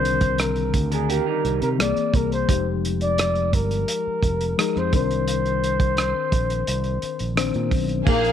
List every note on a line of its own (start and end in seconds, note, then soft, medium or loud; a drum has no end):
0.00 0.71 C2 medium
0.00 1.81 D3 medium
0.00 1.81 D#3 medium
0.00 0.18 F3 soft
0.00 1.79 C4 medium
0.00 0.18 D4 medium
0.00 1.81 D4 medium
0.00 1.80 G#4 medium
0.00 1.81 A#4 medium
0.00 0.42 C5 loud
0.05 closed hi-hat medium
0.21 kick medium
0.21 closed hi-hat soft
0.38 0.92 A#4 medium
0.38 cross-stick medium
0.38 closed hi-hat medium
0.56 closed hi-hat soft
0.74 1.19 D2 medium
0.74 kick medium
0.74 closed hi-hat medium
0.92 1.08 D4 soft
0.92 1.12 G#4 medium
0.92 1.08 A#4 medium
0.92 closed hi-hat soft
1.09 1.26 A#3 medium
1.09 1.26 G4 medium
1.09 1.62 A#4 medium
1.09 closed hi-hat medium
1.26 1.77 G3 soft
1.26 1.76 D#4 medium
1.45 1.59 C2 medium
1.45 closed hi-hat medium
1.62 1.77 C3 medium
1.62 1.70 A#4 medium
1.62 closed hi-hat soft
1.78 1.94 C2 medium
1.78 2.29 E3 medium
1.78 2.29 A#3 medium
1.78 2.29 C4 medium
1.78 2.30 G#4 medium
1.78 2.17 D5 medium
1.78 cross-stick loud
1.78 closed hi-hat medium
1.97 closed hi-hat soft
2.14 2.44 C2 medium
2.14 2.32 A#4 medium
2.14 kick medium
2.14 closed hi-hat medium
2.32 2.72 C5 medium
2.32 closed hi-hat soft
2.48 3.54 F1 medium
2.48 3.49 F3 medium
2.48 3.49 G#3 medium
2.48 3.50 D#4 medium
2.48 3.50 G4 medium
2.48 kick medium
2.48 closed hi-hat medium
2.85 closed hi-hat medium
3.01 3.56 D5 medium
3.01 closed hi-hat soft
3.18 cross-stick medium
3.18 closed hi-hat medium
3.35 closed hi-hat soft
3.53 3.83 G1 medium
3.53 4.59 A#4 medium
3.53 kick medium
3.53 closed hi-hat medium
3.71 closed hi-hat soft
3.88 closed hi-hat medium
4.07 muted fingered electric bass stroke soft
4.23 4.53 F1 medium
4.23 kick medium
4.23 closed hi-hat medium
4.41 closed hi-hat soft
4.58 4.93 F3 medium
4.58 4.93 G#3 medium
4.58 4.93 D#4 medium
4.58 4.94 G#4 medium
4.58 4.80 A#4 medium
4.58 cross-stick loud
4.58 closed hi-hat medium
4.76 4.91 F2 medium
4.76 4.94 C5 medium
4.76 cross-stick soft
4.92 6.12 C2 medium
4.92 6.04 D#3 medium
4.92 6.04 C4 medium
4.92 6.05 D4 medium
4.92 6.05 A#4 medium
4.92 7.34 C5 medium
4.92 kick medium
4.92 closed hi-hat medium
5.11 closed hi-hat soft
5.28 closed hi-hat medium
5.46 closed hi-hat soft
5.64 closed hi-hat medium
5.80 kick medium
5.80 closed hi-hat soft
5.97 cross-stick medium
5.97 closed hi-hat medium
6.32 6.62 A#1 medium
6.32 kick medium
6.32 closed hi-hat medium
6.50 closed hi-hat soft
6.67 6.97 C2 medium
6.67 closed hi-hat medium
6.84 closed hi-hat soft
7.02 muted fingered electric bass stroke soft
7.02 closed hi-hat medium
7.19 7.50 A#1 medium
7.19 closed hi-hat soft
7.36 7.87 D#3 medium
7.36 7.87 C4 medium
7.36 7.88 D4 medium
7.36 7.88 C5 medium
7.36 cross-stick loud
7.36 closed hi-hat medium
7.54 7.70 A#2 medium
7.54 closed hi-hat soft
7.71 8.02 B1 medium
7.71 kick medium
7.71 open hi-hat medium
7.89 closed hi-hat soft
8.06 8.32 A#1 medium
8.06 8.32 F3 medium
8.06 8.32 A#3 medium
8.06 8.32 D#4 medium
8.06 8.32 G#4 medium
8.06 8.32 A#4 medium
8.06 8.32 F5 medium
8.06 kick loud
8.06 crash medium
8.24 closed hi-hat soft